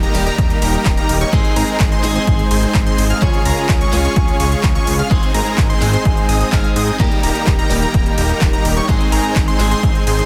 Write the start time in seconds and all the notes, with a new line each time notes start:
Already playing: D#3 G3 A#3 D#4 G4 A#4
0.03 G3 A#3 D#4 G4 A#4 A#5, closed hi-hat
0.14 D#1 G3 A#3 D#4 G4, open hi-hat, ride
0.26 G3 A#3 D#4 G4 A#4 A#5, closed hi-hat
0.38 D#1 G3 A#3 D#4 G4 A#4 A#5, kick, closed hi-hat
0.50 closed hi-hat
0.62 D#1 G3 A#3 D#4 G4 A#4 A#5, open hi-hat, ride
0.74 closed hi-hat
0.85 D#1, kick, clap, closed hi-hat
0.97 G3 A#3 D#4 G4 A#4 A#5, closed hi-hat
1.09 D#1, open hi-hat, ride
1.21 G3 A#3 D#4 G4 C#5 C#6, closed hi-hat
1.32 G#1 G#2 G#3 C4 D#4 G#4 C5 C6, kick, closed hi-hat
1.45 closed hi-hat
1.56 G#1 G#3 C4 D#4 G#4 A#4 A#5, open hi-hat, ride
1.68 closed hi-hat
1.80 G#1, kick, clap, closed hi-hat
1.92 G#3 C4 D#4 G#4 C5 C6, closed hi-hat
2.02 G#1 G#2 G#3 C4 D#4 G#4, open hi-hat, ride
2.15 G#3 C4 D#4 G#4 C5 C6, closed hi-hat
2.27 G#1 G#3 C4 D#4 G#4 C5 C6, kick, closed hi-hat
2.39 closed hi-hat
2.51 G#1 G#3 C4 D#4 G#4 C5 C6, open hi-hat, ride
2.63 closed hi-hat
2.74 G#1, kick, clap, closed hi-hat
2.86 G#3 C4 D#4 G#4 C5 C6, closed hi-hat
2.98 G#1, open hi-hat, ride
3.10 G#3 C4 D#4 G#4 F5 F6, closed hi-hat
3.21 C#2 C#3 G#3 C#4 F4 G#4 C#5 C#6, kick, closed hi-hat
3.34 closed hi-hat
3.45 C#2 G#3 C#4 F4 G#4 A#4 A#5, open hi-hat, ride
3.57 closed hi-hat
3.69 C#2, kick, clap, closed hi-hat
3.81 G#3 C#4 F4 G#4 C#5 C#6, closed hi-hat
3.91 C#2 C#3 G#3 C#4 F4 G#4, open hi-hat, ride
4.04 G#3 C#4 F4 G#4 C#5 C#6, closed hi-hat
4.16 C#2 G#3 C#4 F4 G#4 C#5 C#6, kick, closed hi-hat
4.28 closed hi-hat
4.40 C#2 G#3 C#4 F4 G#4 C#5 C#6, open hi-hat, ride
4.52 closed hi-hat
4.63 C#2, kick, clap, closed hi-hat
4.75 G#3 C#4 F4 G#4 C#5 C#6, closed hi-hat
4.87 C#2, open hi-hat, ride
4.99 G#3 C#4 F4 G#4 F5 F6, closed hi-hat
5.10 G#1 G#2 G#3 C4 D#4 G#4 C5 C6, kick, closed hi-hat
5.23 closed hi-hat
5.34 G#1 G#3 C4 D#4 G#4 A#4 A#5, open hi-hat, ride
5.46 closed hi-hat
5.58 G#1, kick, clap, closed hi-hat
5.70 G#3 C4 D#4 G#4 C5 C6, closed hi-hat
5.80 G#1 G#2 G#3 C4 D#4 G#4, open hi-hat, ride
5.93 G#3 C4 D#4 G#4 C5 C6, closed hi-hat
6.05 G#1 G#3 C4 D#4 G#4 C5 C6, kick, closed hi-hat
6.17 closed hi-hat
6.29 G#1 G#3 C4 D#4 G#4 D#5 D#6, open hi-hat, ride
6.41 G#3 C4 D#4 G#4 D#5 D#6, closed hi-hat
6.52 G#1 G#2 G#3 C4 D#4 G#4 F5 F6, kick, clap, closed hi-hat
6.64 closed hi-hat
6.76 G#2 G#3 C4 D#4 G#4 D#5 D#6, open hi-hat, ride
6.98 D#1 D#3 G3 A#3 D#4 G4 A#4 A#5, kick, closed hi-hat
7.12 closed hi-hat
7.23 D#1 G3 A#3 D#4 G4 A#4 A#5, open hi-hat, ride
7.35 closed hi-hat
7.47 D#1, kick, clap, closed hi-hat
7.59 G3 A#3 D#4 G4 A#4 A#5, closed hi-hat
7.69 D#1 G3 A#3 D#4 G4, open hi-hat, ride
7.82 G3 A#3 D#4 G4 A#4 A#5, closed hi-hat
7.94 D#1 G3 A#3 D#4 G4 A#4 A#5, kick, closed hi-hat
8.06 closed hi-hat
8.18 D#1 G3 A#3 D#4 G4 A#4 A#5, open hi-hat, ride
8.30 closed hi-hat
8.41 D#1, kick, clap, closed hi-hat
8.53 G3 A#3 D#4 G4 A#4 A#5, closed hi-hat
8.65 D#1, open hi-hat, ride
8.77 G3 A#3 D#4 G4 C#5 C#6, closed hi-hat
8.87 G#1 G#2 G#3 C4 D#4 G#4 C5 C6, kick, closed hi-hat
9.01 closed hi-hat
9.12 G#1 G#3 C4 D#4 G#4 A#4 A#5, open hi-hat, ride
9.24 closed hi-hat
9.36 G#1, kick, clap, closed hi-hat
9.48 G#3 C4 D#4 G#4 C5 C6, closed hi-hat
9.58 G#1 G#2 G#3 C4 D#4 G#4, open hi-hat, ride
9.71 G#3 C4 D#4 G#4 C5 C6, closed hi-hat
9.83 G#1 G#3 C4 D#4 G#4 C5 C6, kick, closed hi-hat
9.95 closed hi-hat
10.07 G#1 G#3 C4 D#4 G#4 C5 C6, open hi-hat, ride
10.19 closed hi-hat